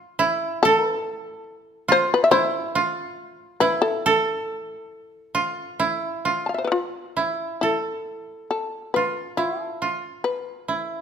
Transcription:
0.00 0.25 F4 medium
0.19 1.94 E4 medium
0.63 0.87 A4 loud
0.63 2.55 A4 medium
0.87 1.43 B4 loud
1.88 2.37 F4 medium
1.88 2.10 C5 loud
2.14 2.23 B4 medium
2.24 2.30 E5 medium
2.31 2.81 E4 medium
2.31 3.55 C5 loud
2.75 3.67 F4 medium
3.60 5.41 E4 medium
3.60 3.80 B4 medium
3.82 6.58 A4 medium
4.06 5.96 A4 medium
5.35 5.86 F4 medium
5.80 6.31 E4 medium
6.25 7.23 F4 medium
6.46 6.54 F5 soft
6.46 6.49 A5 soft
6.54 6.70 E5 soft
6.58 6.64 C5 soft
6.64 6.71 A4 soft
6.64 6.79 B4 soft
6.72 7.59 F4 medium
7.17 9.02 E4 medium
7.61 8.47 E4 medium
7.61 9.53 A4 medium
8.51 8.92 A4 medium
8.94 9.43 F4 soft
8.94 9.35 B4 medium
9.37 9.88 E4 medium
9.37 9.64 F4 medium
9.64 10.21 A4 medium
9.82 10.74 F4 medium
10.24 11.01 B4 medium
10.68 11.01 E4 soft

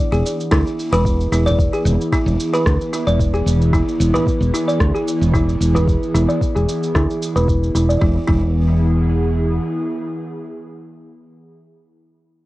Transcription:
0.00 8.00 E3 loud
0.00 8.02 B3 loud
0.00 8.02 G#4 loud
0.00 0.11 D5 medium
0.12 0.22 E1 medium
0.12 0.24 G#4 medium
0.12 shaker soft
0.26 shaker medium
0.40 8.02 E4 medium
0.40 shaker soft
0.51 0.62 D2 medium
0.51 0.60 E4 loud
0.51 kick loud
0.51 cross-stick medium
0.51 shaker soft
0.67 shaker soft
0.80 shaker medium
0.92 1.27 E1 medium
0.92 1.05 B4 loud
0.92 shaker soft
1.05 kick loud
1.05 shaker soft
1.21 shaker soft
1.32 1.67 E1 medium
1.32 1.46 E4 medium
1.32 shaker medium
1.46 1.71 D5 medium
1.46 frame drum medium
1.46 shaker soft
1.59 kick loud
1.59 shaker soft
1.73 1.85 G#4 medium
1.73 shaker soft
1.85 1.96 E1 loud
1.85 shaker medium
2.01 shaker soft
2.12 2.21 E4 medium
2.12 kick loud
2.12 shaker soft
2.26 2.36 E1 medium
2.26 shaker soft
2.40 shaker medium
2.54 2.65 B4 medium
2.54 shaker soft
2.66 2.76 D2 medium
2.66 kick loud
2.66 cross-stick medium
2.66 shaker soft
2.81 shaker soft
2.93 3.06 E4 medium
2.93 shaker medium
3.07 3.41 E1 medium
3.07 3.32 D5 medium
3.07 shaker soft
3.20 kick loud
3.20 shaker soft
3.34 3.46 G#4 medium
3.34 shaker soft
3.46 3.81 E1 medium
3.46 shaker medium
3.61 shaker soft
3.73 3.81 E4 medium
3.73 kick loud
3.73 shaker soft
3.88 shaker soft
4.00 4.10 E1 medium
4.00 shaker medium
4.14 4.26 B4 medium
4.14 frame drum medium
4.14 shaker soft
4.27 kick loud
4.27 shaker soft
4.41 4.50 E1 medium
4.41 shaker soft
4.54 4.67 E4 medium
4.54 shaker medium
4.68 4.93 D5 medium
4.68 shaker soft
4.80 4.91 D2 medium
4.80 kick loud
4.80 cross-stick medium
4.80 shaker soft
4.95 5.06 G#4 medium
4.95 shaker soft
5.08 shaker medium
5.21 5.55 E1 medium
5.21 shaker soft
5.34 5.42 E4 loud
5.34 kick loud
5.34 shaker soft
5.49 shaker soft
5.60 5.96 E1 medium
5.60 shaker medium
5.74 5.87 B4 medium
5.74 frame drum medium
5.74 shaker soft
5.87 kick loud
5.87 shaker soft
6.03 shaker soft
6.14 6.25 E1 medium
6.14 6.28 E4 medium
6.14 shaker medium
6.28 6.54 D5 medium
6.28 shaker soft
6.41 kick medium
6.41 shaker soft
6.55 6.65 E1 medium
6.55 6.67 G#4 medium
6.55 shaker soft
6.69 shaker medium
6.83 shaker soft
6.95 7.05 D2 medium
6.95 7.03 E4 loud
6.95 kick medium
6.95 cross-stick medium
6.95 shaker soft
7.10 shaker soft
7.23 shaker medium
7.36 7.70 E1 medium
7.36 7.48 B4 medium
7.36 shaker soft
7.48 kick medium
7.48 shaker soft
7.63 shaker soft
7.75 7.95 E1 medium
7.75 7.88 E4 medium
7.75 shaker medium
7.89 8.02 D5 medium
7.89 shaker soft
8.02 8.17 E1 medium
8.02 11.29 E3 medium
8.02 8.17 E4 medium
8.02 kick loud
8.11 11.39 B3 medium
8.18 11.46 E4 medium
8.26 9.58 E1 medium
8.26 8.44 E4 medium
8.26 11.53 G#4 medium
8.26 kick loud

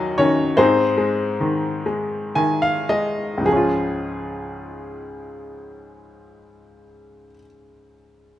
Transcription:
0.00 0.53 D#2 medium
0.00 0.19 D#3 medium
0.00 0.59 F#3 medium
0.00 0.16 D#4 medium
0.00 0.60 F#4 medium
0.00 0.58 G#4 medium
0.00 0.59 A#4 medium
0.00 0.59 D#5 medium
0.00 0.60 F#5 medium
0.00 0.59 G#5 medium
0.00 0.60 A#5 loud
0.18 0.56 D#3 medium
0.18 0.55 C#4 medium
0.18 0.58 C#5 medium
0.57 3.39 G#2 medium
0.57 2.85 C4 medium
0.57 2.85 D#4 medium
0.57 2.85 G#4 medium
0.57 2.84 C5 medium
0.98 1.84 G#3 medium
1.40 2.34 D#3 medium
1.86 2.88 G#3 medium
2.35 3.43 D#3 medium
2.35 2.60 G#5 medium
2.62 2.87 F5 medium
2.89 3.45 G#3 medium
2.89 3.43 D#5 medium
3.38 7.25 C#2 soft
3.38 7.29 G#2 soft
3.45 7.33 F3 soft
3.45 7.37 G#3 soft
3.45 7.34 G#4 medium
3.52 7.40 C#4 soft
3.56 7.44 F4 soft

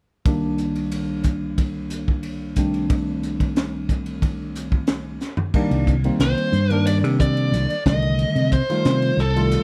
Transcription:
0.25 2.53 C2 medium
0.25 2.53 D#3 medium
0.25 2.54 G3 soft
0.25 2.54 A#3 soft
0.25 2.54 D4 medium
0.25 kick medium
0.25 ride medium
0.58 hi-hat pedal medium
0.58 ride soft
0.75 ride soft
0.92 ride medium
1.24 kick medium
1.24 hi-hat pedal medium
1.24 ride soft
1.58 kick medium
1.58 ride medium
1.90 hi-hat pedal medium
1.90 ride medium
2.08 kick medium
2.23 ride medium
2.56 5.17 C2 medium
2.56 5.18 D#3 soft
2.56 5.18 G3 soft
2.56 5.18 A3 soft
2.56 5.18 C4 soft
2.56 5.19 D4 medium
2.56 kick medium
2.56 hi-hat pedal medium
2.56 ride soft
2.74 ride soft
2.90 kick medium
2.90 ride medium
3.23 hi-hat pedal medium
3.23 ride soft
3.40 kick medium
3.40 ride soft
3.56 snare medium
3.56 ride medium
3.89 kick medium
3.89 hi-hat pedal medium
3.89 ride soft
4.06 ride soft
4.22 kick medium
4.22 ride medium
4.55 hi-hat pedal medium
4.55 ride soft
4.72 kick medium
4.87 snare medium
4.87 ride medium
5.20 snare soft
5.20 hi-hat pedal medium
5.37 floor tom medium
5.54 5.93 D#3 medium
5.54 5.94 G3 medium
5.54 5.94 A#3 medium
5.54 5.94 D4 medium
5.54 muted fingered electric bass stroke soft
5.54 kick medium
5.54 crash medium
5.71 6.08 C2 medium
5.71 ride medium
5.87 kick medium
5.87 hi-hat pedal medium
6.04 6.56 D#3 medium
6.04 6.56 G3 medium
6.04 6.56 A#3 medium
6.04 6.56 C4 medium
6.04 ride medium
6.19 6.33 C2 medium
6.19 6.72 C5 medium
6.19 snare medium
6.19 hi-hat pedal medium
6.19 ride medium
6.38 ride medium
6.52 7.04 G2 medium
6.52 hi-hat pedal medium
6.70 7.73 D#3 medium
6.70 7.73 G3 medium
6.70 7.73 A#3 soft
6.70 7.74 D4 medium
6.70 6.86 A#4 medium
6.70 ride medium
6.86 6.96 D5 medium
6.86 hi-hat pedal medium
6.86 ride medium
7.04 7.54 C3 medium
7.04 ride soft
7.20 7.83 D5 medium
7.20 kick medium
7.20 hi-hat pedal medium
7.37 ride medium
7.52 7.65 C2 medium
7.52 hi-hat pedal medium
7.52 ride medium
7.70 ride soft
7.86 8.24 C2 medium
7.86 8.53 D3 medium
7.86 8.52 D#3 medium
7.86 8.52 G3 medium
7.86 8.53 A3 medium
7.86 8.49 D#5 medium
7.86 kick medium
7.86 snare medium
7.86 hi-hat pedal medium
8.02 ride soft
8.19 hi-hat pedal medium
8.19 ride medium
8.35 8.61 C3 medium
8.35 ride medium
8.51 9.21 C5 medium
8.51 kick medium
8.51 hi-hat pedal medium
8.69 9.20 D#3 medium
8.69 9.21 G3 medium
8.69 9.21 A3 medium
8.69 9.21 F4 medium
8.69 snare soft
8.69 ride soft
8.85 9.10 C3 medium
8.85 snare medium
8.85 hi-hat pedal medium
8.85 ride medium
9.02 ride medium
9.17 9.55 C2 medium
9.17 9.63 A4 medium
9.17 hi-hat pedal medium
9.36 9.63 D#3 medium
9.36 9.63 G3 medium
9.36 9.63 A3 medium
9.36 9.63 F4 medium
9.36 ride medium
9.51 hi-hat pedal medium
9.51 ride medium

